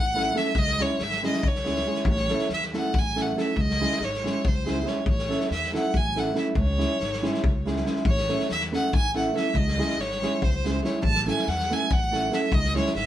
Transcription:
Already playing: A1 F#5
0.14 A3 C#4 E4 A4, snare
0.34 A3 C#4 E4 A4 E5, snare
0.55 C#2 D#5, kick
0.67 snare
0.78 G#3 C#4 E4 G#4 C#5, snare
0.99 G#1, snare
1.03 E5
1.11 snare
1.22 G#3 C#4 E4 G#4, snare
1.27 D#5
1.33 snare
1.43 C#2, kick
1.48 C#5
1.55 snare
1.65 G#3 C#4 E4 G#4, snare
1.75 snare
1.86 G#3 C#4 E4 G#4
1.95 snare
2.05 A1, kick
2.10 C#5
2.17 snare
2.28 A3 C#4 E4 A4, snare
2.39 snare
2.49 E2, snare
2.54 E5
2.62 snare
2.73 A3 C#4 E4 A4, snare
2.77 F#5
2.94 A1, kick
2.99 G#5
3.15 A3 C#4 E4 A4, snare
3.21 F#5
3.36 A3 C#4 E4 A4, snare
3.41 E5
3.51 E5
3.56 C#2, kick
3.61 D#5
3.70 snare
3.80 G#3 C#4 E4 G#4, snare
3.92 snare
4.00 G#1, snare
4.05 C#5
4.14 snare
4.24 G#3 C#4 E4 G#4, snare
4.45 C#2 C5, kick
4.64 G#3 C#4 E4 G#4, snare
4.84 G#3 C#4 E4 G#4, snare
4.88 C#5
5.06 A1 C#5, kick
5.19 snare
5.28 A3 C#4 E4 A4, snare
5.40 snare
5.50 E2 E5, snare
5.63 snare
5.72 A3 C#4 E4 A4 F#5, snare
5.94 A1 G#5, kick
6.15 A3 C#4 E4 A4 F#5, snare
6.34 A3 C#4 E4 A4, snare
6.39 E5
6.55 C#2, kick
6.60 C#5
6.77 G#3 C#4 E4 G#4, snare
7.00 G#1, snare
7.13 snare
7.22 G#3 C#4 E4 G#4, snare
7.34 snare
7.44 C#2, kick
7.65 G#3 C#4 E4 G#4, snare
7.76 snare
7.85 G#3 C#4 E4 G#4, snare
7.96 snare
8.05 A1 C#5, kick
8.18 snare
8.28 A3 C#4 E4 A4, snare
8.39 snare
8.49 E2 E5, snare
8.61 snare
8.71 A3 C#4 E4 A4 F#5, snare
8.93 A1 G#5, kick
9.14 A3 C#4 E4 A4 F#5, snare
9.33 A3 C#4 E4 A4 E5, snare
9.54 C#2 D#5, kick
9.68 snare
9.78 G#3 C#4 E4 G#4, snare
9.89 snare
9.97 G#1 C#5, snare
10.11 snare
10.22 G#3 C#4 E4 G#4, snare
10.42 C#2 C5, kick
10.64 G#3 C#4 E4 G#4, snare
10.84 G#3 C#4 E4 G#4 C#5, snare
11.02 A1 A5, kick
11.15 snare
11.25 A3 C#4 E4 A4 G#5, snare
11.37 snare
11.47 E2 F#5, snare
11.59 snare
11.70 A3 C#4 E4 A4 G#5, snare
11.91 A1 F#5, kick
12.11 A3 C#4 E4 A4, snare
12.31 A3 C#4 E4 A4 E5, snare
12.52 C#2 D#5, kick
12.64 snare
12.74 G#3 C#4 E4 G#4 C#5, snare
12.86 snare
12.95 G#1 E5, snare

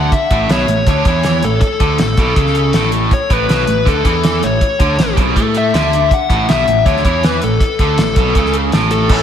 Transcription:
Already playing: D2 D3 F#5
0.12 E5, kick, closed hi-hat
0.31 A1 A2, kick, closed hi-hat
0.49 B1 B2 C#5, snare, closed hi-hat
0.67 A1 A2, closed hi-hat
0.87 D2 D3 C#5, kick, closed hi-hat
1.05 E2 E3, kick, closed hi-hat
1.23 snare, closed hi-hat
1.43 A1 A2 A4, closed hi-hat
1.61 A4, kick, closed hi-hat
1.80 D2 D3, kick, closed hi-hat
1.98 A1 A2, snare, closed hi-hat
2.17 B1 B2, kick, closed hi-hat
2.36 C#2 C#3, kick, closed hi-hat
2.47 snare
2.55 closed hi-hat
2.73 A1 A2, snare, closed hi-hat
2.92 closed hi-hat
3.11 C#5, kick, closed hi-hat
3.30 A1 A2 B4, kick, closed hi-hat
3.49 B1 B2, snare, closed hi-hat
3.67 A1 A2, closed hi-hat
3.86 D2 D3 A4, kick, closed hi-hat
4.05 E2 E3, kick, closed hi-hat
4.24 snare, closed hi-hat
4.43 A1 A2 C#5, closed hi-hat
4.61 kick, closed hi-hat
4.80 D2 D3, kick, closed hi-hat
4.99 A1 A2, snare, closed hi-hat
5.16 B1 B2, kick, closed hi-hat
5.36 A2 A3, kick, closed hi-hat
5.54 E5, closed hi-hat
5.74 D2 D3, snare, closed hi-hat
5.93 closed hi-hat
6.11 F#5, kick, closed hi-hat
6.30 A1 A2, kick, closed hi-hat
6.49 B1 B2 E5, snare, closed hi-hat
6.67 A1 A2, closed hi-hat
6.86 D2 D3 C#5, kick, closed hi-hat
6.97 snare
7.05 E2 E3, kick, closed hi-hat
7.23 B4, snare, closed hi-hat
7.42 A1 A2 A4, closed hi-hat
7.60 kick, closed hi-hat
7.79 D2 D3, kick, closed hi-hat
7.98 A1 A2, snare, closed hi-hat
8.16 B1 B2, kick, closed hi-hat
8.35 C#2 C#3, kick, closed hi-hat
8.45 snare
8.53 closed hi-hat
8.72 A1 A2, snare, closed hi-hat
8.91 A4, closed hi-hat
9.09 A1 A2 E3 A3 C#4 E4 C#5 A5 E6, kick, crash

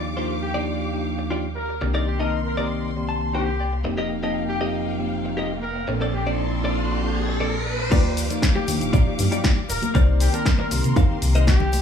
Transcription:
Already playing: D#2 F3 A#3 D4 D#4 G4 F5 D6
0.17 F3 A#3 D4 D#4 F4 G4 A#4 C5
0.43 G4
0.54 F3 A#3 D4 D#4 F4 G4 D5
0.93 F3 A#3 D4 D#4 G4
1.18 muted clean electric guitar stroke
1.30 F3 A#3 D4 D#4 F4 G4 D5
1.56 A#4, muted clean electric guitar stroke
1.69 muted clean electric guitar stroke
1.81 C2 D#3 A#3 C4 D4 G4 C6, muted clean electric guitar stroke
1.94 D#4 A#4 D5
2.07 G4
2.19 D#3 A#3 C4 D#4 A#4 D#5 A5
2.46 A#4
2.57 D#3 A#3 C4 D#4 G4 A#4 D5
2.96 D#3 A#3 C4 G4 D5
3.09 A5
3.21 muted clean electric guitar stroke
3.34 D#3 A#3 C4 D4 D#4 G4 A#4 C5 G5
3.60 D5, muted clean electric guitar stroke
3.73 muted clean electric guitar stroke
3.84 F1 F3 A#3 C4 D#4 G4 F5 G5, muted clean electric guitar stroke, riser
3.98 G4 A#4 D#5
4.23 F3 A#3 C4 D#4 G4 A#4 D#5 A5
4.49 G4
4.60 F3 A#3 C4 D#4 G4 A#4 D#5
4.99 F3 A#3 C4 D#4 G4
5.25 muted clean electric guitar stroke
5.37 F3 A#3 C4 D#4 G4 A#4 D#5
5.63 A#4, muted clean electric guitar stroke
5.75 muted clean electric guitar stroke
5.88 A#1 F3 A#3 C4 D4 A4 D5 A5 C6, muted clean electric guitar stroke
6.01 A4 C5 D5
6.14 G4
6.26 F3 A#3 C4 D4 A4 C5 D5
6.64 F3 A#3 C4 D4 A4 C5 D5
7.03 F3 A#3 C4 D4 A4
7.28 muted clean electric guitar stroke
7.40 F3 A#3 C4 D4 A4 C5 D5
7.66 muted clean electric guitar stroke
7.79 muted clean electric guitar stroke
7.91 D#2 F3 A#3 D#4 F4 G4 D5 F5 D6, kick, closed hi-hat, crash, shaker
8.17 open hi-hat, shaker
8.30 F3 A#3 D#4 A#4 D5, closed hi-hat, shaker
8.42 kick, snare, closed hi-hat, shaker
8.55 G4, muted clean electric guitar stroke, high conga
8.67 D#2 F3 A#3 D4 D#4 G4, muted clean electric guitar stroke, open hi-hat, shaker
8.81 D#1, closed hi-hat, shaker
8.93 A#1 D#4 F4 G4 D5, kick, closed hi-hat, shaker
9.06 F3 A#3 D#4 G4 D5
9.19 G2, open hi-hat, low conga, shaker
9.31 D#4 F4 G4 D5, closed hi-hat, shaker
9.44 F3 A#3 D4 D#4 G4, kick, snare, closed hi-hat, shaker
9.69 D#1 A#4, muted clean electric guitar stroke, open hi-hat, shaker
9.82 closed hi-hat, high conga, low conga, shaker
9.95 C2 D#3 A#3 C4 D#4 G4 A#4 C5 D5 C6, kick, closed hi-hat, low conga, shaker
10.20 G4, open hi-hat, shaker
10.33 D#3 A#3 C4 A#4 D5 A5, closed hi-hat, shaker
10.46 kick, snare, closed hi-hat, shaker
10.59 A#4, muted clean electric guitar stroke, high conga
10.71 C2 D#3 A#3 C4 G4 A#4, muted clean electric guitar stroke, open hi-hat, shaker
10.84 C3, closed hi-hat, shaker
10.96 F2 D#4 A#4 C5 F5, kick, closed hi-hat, shaker
11.09 D#3 A#3 C4 G4
11.22 C2, open hi-hat, shaker
11.34 D#4 A#4 C5 D#5, closed hi-hat, shaker
11.36 shaker
11.47 D#3 A#3 C4 D4 G4, kick, snare, closed hi-hat, shaker
11.60 C2, low conga
11.73 muted clean electric guitar stroke, open hi-hat, high conga, shaker

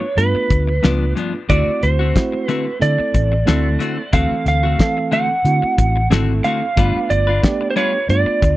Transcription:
Already playing: C#5
0.01 muted clean electric guitar stroke
0.16 G2 A3 B3 D4 F4 B4, closed hi-hat
0.35 muted fingered electric bass stroke, muted clean electric guitar stroke
0.50 D2, muted clean electric guitar stroke, kick, closed hi-hat
0.67 muted clean electric guitar stroke
0.82 C#2 G2 F3 A3 B3 D4 F4, snare, closed hi-hat
1.15 G2 F3 B3 D4, closed hi-hat
1.34 muted clean electric guitar stroke
1.49 D2 D3 A3 C4 E4 F#4 D5, kick, closed hi-hat
1.67 muted fingered electric bass stroke
1.83 D2 C5, muted clean electric guitar stroke, closed hi-hat
1.99 A3 C4 F#4
2.15 A3 C4 E4 F#4, muted clean electric guitar stroke, kick, snare, closed hi-hat
2.32 muted clean electric guitar stroke
2.46 D3 A3 C4 B4, closed hi-hat
2.51 F#4
2.66 muted clean electric guitar stroke
2.80 D3 A3 C4 E4 A4 D5, closed hi-hat
2.98 muted clean electric guitar stroke, muted fingered electric bass stroke
3.14 A1, muted clean electric guitar stroke, kick, closed hi-hat
3.32 muted clean electric guitar stroke
3.46 D2 D3 A3 C4 E4 F#4 A4, snare, closed hi-hat
3.79 D3 A3 C4 F#4, closed hi-hat
3.98 muted clean electric guitar stroke
4.13 D2 D3 E3 A3 C4 F#4 A4 F5, kick, closed hi-hat
4.31 muted fingered electric bass stroke
4.46 D2 F5, muted clean electric guitar stroke, snare, closed hi-hat
4.63 A3 C4 F#4
4.78 E3 A3 C4 A4, muted clean electric guitar stroke, kick, snare, closed hi-hat
4.97 muted clean electric guitar stroke
5.12 D3 A3 C4 F#4 F#5, closed hi-hat
5.29 muted clean electric guitar stroke
5.45 D3 A3 C4 E4 F#4, closed hi-hat
5.62 muted clean electric guitar stroke, muted fingered electric bass stroke
5.78 A1, muted clean electric guitar stroke, kick, closed hi-hat
5.96 muted clean electric guitar stroke
6.10 G#1 D3 A3 C4 E4 F#4 A4, snare, closed hi-hat
6.44 D3 A3 C4 F#4 F5, closed hi-hat
6.61 muted clean electric guitar stroke
6.76 G1 G3 A3 B3 D4 F4 B4, kick, closed hi-hat
7.10 G1 D5, muted clean electric guitar stroke, closed hi-hat
7.27 D4 F4 B4
7.43 A3 B3 D4 G4, muted clean electric guitar stroke, kick, snare, closed hi-hat
7.61 muted clean electric guitar stroke
7.71 C5
7.76 G3 D4 F4 B4 C#5, closed hi-hat
7.93 muted clean electric guitar stroke
8.09 G2 A3 B3 D4 F4 D5, closed hi-hat
8.26 muted fingered electric bass stroke, muted clean electric guitar stroke
8.42 D2, muted clean electric guitar stroke, kick, closed hi-hat

